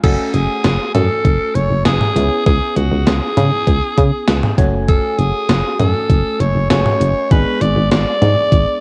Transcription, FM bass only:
0.04 F#1
0.34 F#1
0.64 F#1
0.95 F#2
1.25 F#1
1.55 F#1
1.70 F#1
1.85 F#1
2.16 C#2
2.46 C#2
2.76 C#2
2.92 C#2
3.07 C#2
3.37 C#3
3.67 C#2
3.98 C#3
4.28 C#2
4.58 F#1
5.19 F#1
5.49 F#1
5.80 F#2
6.10 F#1
6.40 F#1
6.55 F#1
6.70 F#1
7.01 F#1
7.31 G#1
7.61 G#1
7.76 G#1
7.91 G#1
8.22 G#2
8.52 G#1

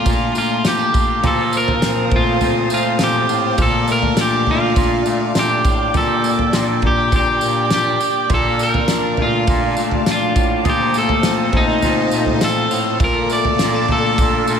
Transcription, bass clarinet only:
0.06 A#2
0.35 A#2
0.65 A#2
1.23 A#2
1.82 A#2
2.12 A#2
2.41 A#2
2.70 A#2
2.99 A#2
3.29 A2
3.58 A#2
4.17 A#2
4.47 A#2
4.76 A#2
5.05 A#2
5.35 A#2
5.64 A2
5.94 A#2
6.53 A#2
6.83 A#2
7.12 A#2
7.42 A#2
7.72 A#2
8.30 A#2
8.89 A#2
9.19 A#2
9.48 A#2
9.77 A#2
10.06 A#2
10.36 A2
10.65 A#2
11.24 A#2
11.53 A#2
11.83 A#2
12.12 A#2
12.41 A#2
12.70 A2
13.00 A#2
13.59 A#2
13.88 A#2
14.18 A#2
14.48 A#2

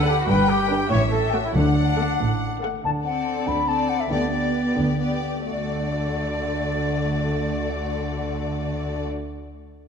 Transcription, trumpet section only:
0.08 G4
0.19 F#4
0.28 B4
0.49 G4
0.90 C#5
1.12 A4
1.33 F#4
1.45 E4
1.55 D4

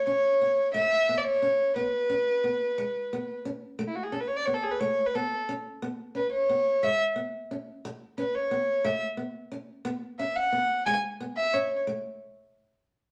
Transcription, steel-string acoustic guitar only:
0.07 C#4
0.41 B3
0.74 A3
1.09 B3
1.42 C#4
1.76 B3
2.10 C#4
2.44 B3
2.78 G#3
3.13 B3
3.45 C#4
3.79 A3
4.12 C#4
4.47 B3
4.81 A3
5.15 B3
5.49 C#4
5.82 B3
6.15 C#4
6.49 B3
6.83 G#3
7.16 B3
7.51 C#4
7.85 muted steel-string acoustic guitar stroke
8.18 C#4
8.51 B3
8.84 A3
9.17 B3
9.52 C#4
9.85 B3
10.19 C#4
10.52 B3
10.86 G#3
11.20 B3
11.54 C#4
11.87 A3

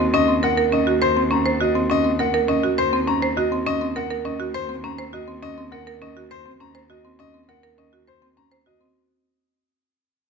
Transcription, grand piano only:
0.14 D#5
0.44 F#5
0.73 D#5
1.02 C5
1.32 A#5
1.61 D#5
1.91 D#5
2.20 F#5
2.49 D#5
2.78 C5
3.08 A#5
3.37 D#5
3.66 D#5
3.97 F#5
4.25 D#5
4.54 C5
4.84 A#5
5.14 D#5
5.43 D#5
5.72 F#5
6.02 D#5
6.31 C5
6.61 A#5
6.90 D#5
7.20 D#5
7.49 F#5
7.78 D#5
8.08 C5
8.37 A#5
8.67 D#5

